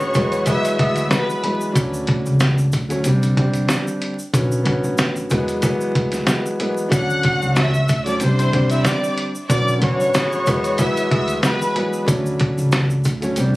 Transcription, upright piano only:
Already playing: D3 F#3 B3 C#4
0.14 E3 F#3 G#3 B3
0.46 E3 F#3 G#3 B3
1.09 E3 F#3 G#3 B3
1.43 E3 F#3 G#3 B3
1.72 F#3 A3 C#4 D4
2.89 D3 F#3 A3 C#4
3.04 D3 G3 C4 D4
3.37 D3 G3 C4 D4
4.33 D3 F#3 B3 C#4
4.62 D3 F#3 B3 C#4
5.30 E3 F#3 G#3 B3
5.63 E3 F#3 G#3 B3
6.25 E3 F#3 G#3 B3
6.59 E3 F#3 G#3 B3
6.89 F#3 A3 C#4 D4
8.05 D3 F#3 A3 C#4
8.20 D3 G3 C4 D4
8.53 D3 G3 C4 D4
9.49 D3 F#3 B3 C#4
9.78 D3 F#3 B3 C#4
10.46 E3 F#3 G#3 B3
10.79 E3 F#3 G#3 B3
11.41 E3 F#3 G#3 B3
11.75 E3 F#3 G#3 B3
12.04 F#3 A3 C#4 D4
13.20 D3 F#3 A3 C#4
13.36 D3 G3 C4 D4

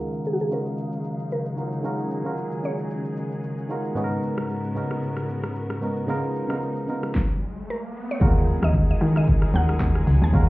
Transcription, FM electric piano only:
Already playing: D#3 G#3 C#4 F4 F#4 A#4
0.49 D#3 G#3 C#4 F4 F#4 A#4
1.56 D#3 G#3 C#4 F4 F#4 A#4
1.83 D#3 G#3 C#4 F4 F#4 A#4
2.24 D#3 G#3 C#4 F4 F#4 A#4
2.62 D#3 G#3 C#4 F4 F#4 G#4
3.69 D#3 G#3 C#4 F4 F#4 A#4
3.95 G#2 B3 C#4 D#4 F#4 G#4
4.04 A#4
4.75 G#2 B3 C#4 D#4 F#4 A#4
5.81 G#2 B3 C#4 D#4 F#4 A#4
6.07 C#3 G#3 B3 D#4 F4 A#4
6.48 C#3 G#3 B3 D#4 F4 A#4
6.87 C#3 G#3 B3 D#4 F4 A#4
8.20 G#3 C#4 F4 F#4 A#4
9.53 G#3 C#4 D#4 F#4 A#4
10.32 G#3 C#4 F4 F#4 A#4

